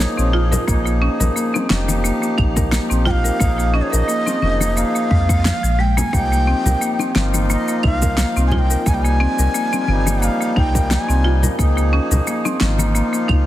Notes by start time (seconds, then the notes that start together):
Already playing: F3 A#3 D#4 G#4 C#5
0.00 A#3, snare, cabasa
0.18 A#1 C4, cabasa
0.33 F4
0.52 A#4, high bongo, low conga, cabasa
0.67 A#1 F3 A#3 D#4 G#4, kick, cabasa
0.86 A#3, cabasa
1.02 C#4
1.20 A#1 A#4, low conga, cabasa
1.36 A#3, cabasa
1.54 C4, high bongo, cabasa
1.69 F1 F3 A#3 C#4 D#4 G4, snare, high conga
1.88 A#3, high bongo, high conga, cabasa
2.04 A#3, cabasa
2.22 A#3, cabasa
2.38 A#1 D#4, kick, claves
2.56 A#4, kick, high conga, cabasa
2.72 A#3, snare, cabasa
2.90 A#1 C4, cabasa
3.05 F4 G5, kick, low conga
3.11 F5
3.24 A#4, cabasa
3.38 A#1 F3 A#3 D#4, kick, cabasa
3.42 G#4
3.58 A#3, cabasa
3.74 C#4 D#5
3.82 C#5
3.91 A#1 A#4 F5, cabasa
3.95 D#5
4.08 A#3, cabasa
4.26 C4, high bongo, cabasa
4.41 F1 F3 A#3 C#4 D#4, high conga
4.45 G#4
4.60 A#3, high bongo, high conga, cabasa
4.77 A#3 F5, cabasa
4.95 A#3, cabasa
5.11 F2 G#3, kick, high bongo
5.29 A#3, kick, cabasa
5.44 F3 A#3 D#4 C5, snare, cabasa
5.63 A#1 F3, cabasa
5.79 G#3 G5
5.97 A#3 G#5, high bongo, low conga, cabasa
6.11 C2 F3 A#3 D#4 G4 G5, kick, cabasa
6.32 A#3, cabasa
6.47 C4
6.65 C2 A#4, low conga, cabasa
6.81 A#3, cabasa
6.99 C4, high bongo, cabasa
7.14 G1 F3 A#3 C4 D#4 F4, snare, high conga
7.34 A#3, high bongo, high conga, cabasa
7.50 A#3 D#5, cabasa
7.68 A#3, cabasa
7.83 C2 D#4 F5, kick, claves
8.02 A#4, kick, high conga, cabasa
8.18 A#3, snare, cabasa
8.36 C2 C4, cabasa
8.47 G#5
8.51 F4 G#5, kick, low conga
8.59 G5
8.70 A#4, cabasa
8.84 C2 F3 A#3 D#4, kick, cabasa
8.88 G3 G#5
8.94 G5
9.02 A#3 G#5, cabasa
9.20 C4
9.38 C2 A#4, cabasa
9.54 A#3, cabasa
9.73 C4, high bongo, cabasa
9.87 G1 F3 G3 A#3 C4 D#4, high conga
10.07 A#3, high bongo, high conga, cabasa
10.22 A#3 F5, cabasa
10.40 A#3, cabasa
10.56 C2 D#4 G5, kick, high bongo
10.75 A#4, kick, cabasa
10.90 A#3 G#5, snare, cabasa
11.09 C2 C4, cabasa
11.24 F4
11.43 A#4, high bongo, low conga, cabasa
11.57 C#2 F3 A#3 D#4, kick, cabasa
11.61 G#4
11.77 A#3, cabasa
11.93 C#4
12.11 C#2 A#4, low conga, cabasa
12.27 A#3, cabasa
12.45 C4, high bongo, cabasa
12.59 G#1 F3 A#3 C#4 D#4, snare, high conga
12.63 F4
12.78 A#3, high bongo, high conga, cabasa
12.95 A#3, cabasa
13.13 A#3, cabasa
13.28 C#2 D#4, kick, claves